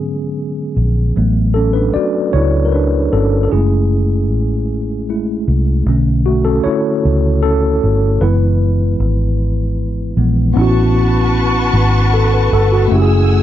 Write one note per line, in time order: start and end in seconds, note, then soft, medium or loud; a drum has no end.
0.00 0.72 G#2 medium
0.00 1.17 D3 soft
0.00 1.16 F#3 soft
0.00 1.17 G#3 soft
0.00 1.16 B3 medium
0.00 1.16 C#4 medium
0.00 1.16 G#4 medium
0.77 1.11 A#1 medium
1.16 1.90 A1 medium
1.16 3.47 F#3 medium
1.16 3.47 A3 medium
1.16 3.47 B3 soft
1.54 1.73 C#4 medium
1.54 1.74 A4 medium
1.73 1.93 D4 medium
1.73 1.94 B4 medium
1.94 2.31 F#4 medium
1.94 2.34 D5 medium
1.94 muted fingered electric bass stroke soft
2.33 3.08 C#2 medium
2.33 2.64 E4 medium
2.33 2.66 C#5 medium
2.65 2.72 A#4 medium
2.72 3.09 D4 medium
2.72 3.12 B4 medium
3.13 3.47 G1 medium
3.13 3.43 C#4 medium
3.13 3.42 A4 medium
3.43 3.50 A4 medium
3.51 4.31 F#1 medium
3.51 5.08 G#3 soft
3.51 5.08 A3 soft
3.51 4.36 C#4 medium
3.51 5.09 E4 medium
3.51 4.35 G#4 medium
4.31 5.43 A1 medium
5.09 5.43 G#3 soft
5.09 5.44 A3 soft
5.09 5.44 E4 soft
5.48 5.82 C2 medium
5.86 6.60 B1 medium
5.86 7.00 D3 medium
5.86 6.27 A3 soft
5.86 6.46 C#4 medium
6.26 6.45 A3 medium
6.26 6.45 F#4 medium
6.45 6.64 C#4 medium
6.45 6.65 A4 medium
6.64 7.39 E4 medium
6.64 7.44 C#5 medium
6.64 muted fingered electric bass stroke soft
7.05 7.78 C#2 medium
7.43 8.18 C#4 medium
7.43 8.23 A4 medium
7.83 8.18 G1 medium
8.21 8.95 F#1 loud
8.21 9.35 E3 medium
8.21 9.35 G#3 soft
8.21 9.35 B3 medium
8.21 10.14 E4 medium
8.21 10.13 B4 medium
9.00 10.13 G#1 medium
10.17 10.52 A#1 medium
10.17 10.52 E3 soft
10.17 10.53 G#3 soft
10.17 10.52 B3 medium
10.53 11.70 A1 loud
10.53 12.86 B3 medium
10.53 12.87 C#4 medium
10.53 12.89 B4 medium
10.53 12.89 F#5 medium
10.53 12.89 A5 medium
10.53 12.89 C#6 medium
10.59 12.89 E4 medium
10.59 12.12 F#4 medium
11.73 12.48 G#1 loud
12.14 12.32 A4 medium
12.34 12.52 B4 medium
12.53 12.88 G1 medium
12.53 12.71 A4 medium
12.72 13.09 F#4 medium
12.88 13.43 F#1 loud
12.88 13.43 A3 medium
12.88 13.43 C#4 medium
12.88 13.43 F#5 medium
12.88 13.43 E6 medium
12.92 13.43 A3 medium
12.92 13.43 E4 medium
12.92 13.00 G4 medium
12.92 13.43 G#5 medium
13.02 13.43 G#4 medium